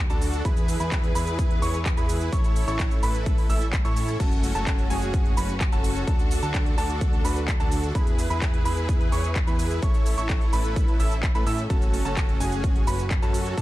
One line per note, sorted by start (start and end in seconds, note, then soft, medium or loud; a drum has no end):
0.00 0.43 D3 medium
0.00 0.43 D4 medium
0.00 0.41 F#4 medium
0.00 0.43 A4 medium
0.10 0.43 D2 loud
0.10 0.42 D4 medium
0.10 0.42 F#4 medium
0.10 0.42 A4 medium
0.10 0.42 A5 loud
0.10 closed hi-hat soft
0.10 shaker soft
0.22 open hi-hat loud
0.22 shaker medium
0.33 closed hi-hat soft
0.33 shaker soft
0.45 0.78 E2 loud
0.45 2.31 E3 medium
0.45 0.77 E4 medium
0.45 4.16 E4 medium
0.45 0.77 G#4 medium
0.45 2.31 G#4 medium
0.45 0.77 B4 loud
0.45 2.31 B4 medium
0.45 0.77 B5 loud
0.45 kick loud
0.45 closed hi-hat medium
0.45 shaker soft
0.57 closed hi-hat soft
0.57 shaker soft
0.68 open hi-hat loud
0.68 shaker medium
0.80 1.13 E2 loud
0.80 1.12 E4 medium
0.80 1.12 G#4 medium
0.80 1.12 B4 loud
0.80 1.13 B5 loud
0.80 closed hi-hat soft
0.80 shaker soft
0.92 kick loud
0.92 clap loud
0.92 closed hi-hat medium
0.92 shaker soft
1.04 closed hi-hat soft
1.15 1.60 E2 loud
1.15 1.59 E4 medium
1.15 1.59 G#4 medium
1.15 1.59 B4 loud
1.15 1.59 B5 loud
1.15 open hi-hat loud
1.15 shaker medium
1.27 closed hi-hat soft
1.27 shaker soft
1.39 kick loud
1.39 closed hi-hat medium
1.39 shaker soft
1.51 closed hi-hat soft
1.62 1.95 E2 loud
1.62 1.78 E4 medium
1.62 1.78 G#4 medium
1.62 1.78 C#5 loud
1.62 1.78 C#6 loud
1.62 open hi-hat loud
1.62 shaker medium
1.74 closed hi-hat soft
1.74 shaker soft
1.86 kick loud
1.86 clap loud
1.86 closed hi-hat medium
1.86 shaker soft
1.97 2.30 E2 loud
1.97 2.30 E4 medium
1.97 2.30 G#4 medium
1.97 2.30 B4 loud
1.97 2.30 B5 medium
1.97 closed hi-hat soft
1.97 shaker soft
2.09 open hi-hat loud
2.09 shaker medium
2.21 closed hi-hat soft
2.21 shaker soft
2.32 2.65 A1 medium
2.32 6.04 A3 medium
2.32 6.04 C#4 medium
2.32 2.65 E4 medium
2.32 2.65 A4 medium
2.32 2.65 C#5 medium
2.32 2.65 C#6 medium
2.32 kick loud
2.32 closed hi-hat medium
2.32 shaker soft
2.44 closed hi-hat soft
2.44 shaker soft
2.56 open hi-hat medium
2.56 shaker medium
2.68 3.01 A1 loud
2.68 3.00 E4 medium
2.68 3.00 A4 medium
2.68 3.00 C#5 loud
2.68 3.00 C#6 loud
2.68 closed hi-hat soft
2.68 shaker soft
2.79 kick loud
2.79 clap loud
2.79 closed hi-hat medium
2.79 shaker soft
2.91 closed hi-hat soft
2.91 shaker soft
3.03 3.47 A1 loud
3.03 3.47 E4 loud
3.03 3.47 A4 medium
3.03 3.47 B4 loud
3.03 3.47 B5 loud
3.03 open hi-hat loud
3.03 shaker medium
3.15 closed hi-hat soft
3.15 shaker soft
3.26 kick loud
3.26 closed hi-hat medium
3.26 shaker soft
3.38 open hi-hat medium
3.38 shaker soft
3.50 3.83 A1 loud
3.50 3.65 E4 medium
3.50 3.65 A4 medium
3.50 3.65 E5 loud
3.50 3.65 E6 loud
3.50 open hi-hat loud
3.50 shaker medium
3.61 closed hi-hat soft
3.61 shaker soft
3.73 kick loud
3.73 clap loud
3.73 closed hi-hat medium
3.73 shaker soft
3.85 4.18 A2 loud
3.85 4.17 E4 medium
3.85 4.17 A4 medium
3.85 4.17 C#5 loud
3.85 4.17 C#6 medium
3.85 closed hi-hat soft
3.85 shaker soft
3.97 open hi-hat loud
3.97 shaker medium
4.08 closed hi-hat soft
4.08 shaker soft
4.20 4.53 F#1 medium
4.20 4.52 C#4 medium
4.20 4.52 F#4 medium
4.20 7.91 F#4 medium
4.20 4.52 A4 medium
4.20 4.52 A5 medium
4.20 kick loud
4.20 closed hi-hat medium
4.20 crash medium
4.20 shaker soft
4.32 closed hi-hat soft
4.32 shaker soft
4.43 open hi-hat loud
4.43 shaker medium
4.55 4.88 F#1 loud
4.55 4.88 C#4 medium
4.55 4.88 F#4 medium
4.55 4.88 A4 loud
4.55 4.87 A5 loud
4.55 closed hi-hat soft
4.55 shaker soft
4.67 kick loud
4.67 clap loud
4.67 closed hi-hat medium
4.67 shaker soft
4.79 closed hi-hat soft
4.90 5.35 F#1 loud
4.90 5.34 C#4 loud
4.90 5.34 F#4 medium
4.90 5.34 G#4 loud
4.90 5.34 G#5 loud
4.90 open hi-hat loud
4.90 shaker medium
5.02 closed hi-hat soft
5.02 shaker soft
5.14 kick loud
5.14 closed hi-hat medium
5.14 shaker soft
5.25 closed hi-hat soft
5.37 5.70 F#1 medium
5.37 5.53 C#4 medium
5.37 5.53 F#4 medium
5.37 5.53 B4 loud
5.37 5.53 B5 loud
5.37 open hi-hat loud
5.37 shaker medium
5.49 closed hi-hat soft
5.49 shaker soft
5.61 kick loud
5.61 clap loud
5.61 closed hi-hat medium
5.61 shaker soft
5.72 6.05 F#1 loud
5.72 6.05 C#4 medium
5.72 6.05 F#4 medium
5.72 6.05 A4 loud
5.72 6.05 A5 medium
5.72 closed hi-hat soft
5.72 shaker soft
5.84 open hi-hat loud
5.84 shaker medium
5.96 closed hi-hat soft
5.96 shaker soft
6.07 6.40 D2 loud
6.07 7.93 D3 medium
6.07 6.40 D4 medium
6.07 7.93 D4 medium
6.07 6.40 F#4 medium
6.07 6.40 A4 loud
6.07 7.93 A4 medium
6.07 6.40 A5 medium
6.07 kick loud
6.07 closed hi-hat medium
6.07 shaker soft
6.19 closed hi-hat soft
6.19 shaker soft
6.31 open hi-hat loud
6.31 shaker medium
6.43 6.76 D2 loud
6.43 6.75 D4 medium
6.43 6.75 F#4 medium
6.43 6.75 A4 loud
6.43 6.75 A5 loud
6.43 closed hi-hat soft
6.43 shaker soft
6.54 kick loud
6.54 clap loud
6.54 closed hi-hat medium
6.54 shaker soft
6.66 closed hi-hat soft
6.78 7.22 D2 loud
6.78 7.22 D4 loud
6.78 7.22 F#4 medium
6.78 7.22 A4 loud
6.78 7.22 A5 loud
6.78 open hi-hat loud
6.78 shaker medium
6.90 closed hi-hat soft
6.90 shaker soft
7.01 kick loud
7.01 closed hi-hat medium
7.01 shaker soft
7.13 closed hi-hat soft
7.25 7.58 D2 loud
7.25 7.40 D4 medium
7.25 7.40 F#4 medium
7.25 7.40 B4 loud
7.25 7.40 B5 loud
7.25 open hi-hat loud
7.25 shaker medium
7.36 closed hi-hat soft
7.36 shaker soft
7.48 kick loud
7.48 clap loud
7.48 closed hi-hat medium
7.48 shaker soft
7.60 7.93 D2 loud
7.60 7.92 D4 medium
7.60 7.92 F#4 medium
7.60 7.92 A4 medium
7.60 7.92 A5 loud
7.60 closed hi-hat soft
7.60 shaker soft
7.72 open hi-hat loud
7.72 shaker medium
7.83 closed hi-hat soft
7.83 shaker soft
7.95 8.28 E2 loud
7.95 9.81 E3 medium
7.95 8.27 E4 medium
7.95 9.81 E4 medium
7.95 8.27 G#4 medium
7.95 9.81 G#4 medium
7.95 8.27 B4 medium
7.95 9.81 B4 medium
7.95 8.27 B5 medium
7.95 kick loud
7.95 closed hi-hat medium
7.95 shaker soft
8.07 closed hi-hat soft
8.07 shaker soft
8.19 open hi-hat loud
8.19 shaker medium
8.30 8.63 E2 loud
8.30 8.63 E4 medium
8.30 8.63 G#4 medium
8.30 8.63 B4 loud
8.30 8.63 B5 loud
8.30 closed hi-hat soft
8.30 shaker soft
8.42 kick loud
8.42 clap loud
8.42 closed hi-hat medium
8.42 shaker soft
8.54 closed hi-hat soft
8.65 9.10 E2 loud
8.65 9.09 E4 loud
8.65 9.09 G#4 medium
8.65 9.09 B4 loud
8.65 9.09 B5 loud
8.65 open hi-hat loud
8.65 shaker medium
8.77 closed hi-hat soft
8.77 shaker soft
8.89 kick loud
8.89 closed hi-hat medium
8.89 shaker soft
9.01 closed hi-hat soft
9.12 9.45 E2 loud
9.12 9.28 E4 medium
9.12 9.28 G#4 medium
9.12 9.28 C#5 loud
9.12 9.28 C#6 loud
9.12 open hi-hat loud
9.12 shaker medium
9.24 closed hi-hat soft
9.24 shaker soft
9.36 kick loud
9.36 clap loud
9.36 closed hi-hat medium
9.36 shaker soft
9.47 9.80 E2 loud
9.47 9.80 E4 medium
9.47 9.80 G#4 medium
9.47 9.80 B4 loud
9.47 9.80 B5 medium
9.47 closed hi-hat soft
9.47 shaker soft
9.59 open hi-hat loud
9.59 shaker medium
9.71 closed hi-hat soft
9.71 shaker soft
9.83 10.15 A1 loud
9.83 13.54 A3 medium
9.83 13.54 C#4 medium
9.83 10.15 E4 medium
9.83 11.68 E4 medium
9.83 10.15 A4 medium
9.83 10.15 C#5 medium
9.83 10.15 C#6 medium
9.83 kick loud
9.83 closed hi-hat medium
9.83 shaker soft
9.94 closed hi-hat soft
9.94 shaker soft
10.06 open hi-hat loud
10.06 shaker medium
10.18 10.51 A1 loud
10.18 10.50 E4 medium
10.18 10.50 A4 medium
10.18 10.50 C#5 loud
10.18 10.50 C#6 loud
10.18 closed hi-hat soft
10.18 shaker soft
10.29 kick loud
10.29 clap loud
10.29 closed hi-hat medium
10.29 shaker soft
10.41 closed hi-hat soft
10.53 10.97 A1 loud
10.53 10.97 E4 medium
10.53 10.97 A4 medium
10.53 10.97 B4 loud
10.53 10.97 B5 loud
10.53 open hi-hat loud
10.53 shaker medium
10.65 closed hi-hat soft
10.65 shaker soft
10.76 kick loud
10.76 closed hi-hat medium
10.76 shaker soft
10.88 closed hi-hat soft
11.00 11.33 A1 loud
11.00 11.15 E4 medium
11.00 11.15 A4 medium
11.00 11.15 E5 loud
11.00 11.15 E6 loud
11.00 open hi-hat loud
11.00 shaker medium
11.11 closed hi-hat soft
11.11 shaker soft
11.23 kick loud
11.23 clap loud
11.23 closed hi-hat medium
11.23 shaker soft
11.35 11.44 A2 loud
11.35 11.44 E4 loud
11.35 11.44 A4 medium
11.35 11.44 B4 loud
11.35 11.44 B5 loud
11.35 closed hi-hat soft
11.35 shaker soft
11.47 11.68 A2 loud
11.47 11.62 E4 loud
11.47 11.62 A4 loud
11.47 11.62 E5 loud
11.47 11.62 E6 loud
11.47 open hi-hat loud
11.47 shaker medium
11.58 closed hi-hat soft
11.58 shaker soft
11.70 12.03 F#1 loud
11.70 12.02 C#4 medium
11.70 13.62 F#4 medium
11.70 12.02 F#4 medium
11.70 12.02 A4 medium
11.70 12.02 A5 medium
11.70 kick loud
11.70 closed hi-hat medium
11.70 shaker soft
11.82 closed hi-hat soft
11.82 shaker soft
11.94 open hi-hat loud
11.94 shaker medium
12.05 12.38 F#1 medium
12.05 12.38 C#4 medium
12.05 12.38 F#4 medium
12.05 12.38 A4 loud
12.05 12.38 A5 loud
12.05 closed hi-hat soft
12.05 shaker soft
12.17 kick loud
12.17 clap loud
12.17 closed hi-hat medium
12.17 shaker soft
12.29 closed hi-hat soft
12.40 12.85 F#1 loud
12.40 12.84 C#4 loud
12.40 12.84 F#4 medium
12.40 12.84 G#4 loud
12.40 12.84 G#5 loud
12.40 open hi-hat loud
12.40 shaker medium
12.52 closed hi-hat soft
12.52 shaker soft
12.64 kick loud
12.64 closed hi-hat medium
12.64 shaker soft
12.76 closed hi-hat soft
12.87 13.20 F#1 loud
12.87 13.03 C#4 medium
12.87 13.03 F#4 medium
12.87 13.03 B4 loud
12.87 13.03 B5 loud
12.87 open hi-hat loud
12.87 shaker medium
12.99 closed hi-hat soft
12.99 shaker soft
13.11 kick loud
13.11 clap loud
13.11 closed hi-hat medium
13.11 shaker soft
13.22 13.55 F#2 loud
13.22 13.55 C#4 medium
13.22 13.55 F#4 medium
13.22 13.55 A4 loud
13.22 13.55 A5 medium
13.22 closed hi-hat soft
13.22 shaker soft
13.34 open hi-hat loud
13.34 shaker medium
13.46 closed hi-hat soft
13.46 shaker soft
13.58 13.62 D2 loud
13.58 13.62 D3 medium
13.58 13.62 D4 medium
13.58 13.62 F#4 medium
13.58 13.62 A4 medium
13.58 13.62 A5 loud
13.58 kick loud
13.58 closed hi-hat medium
13.58 shaker soft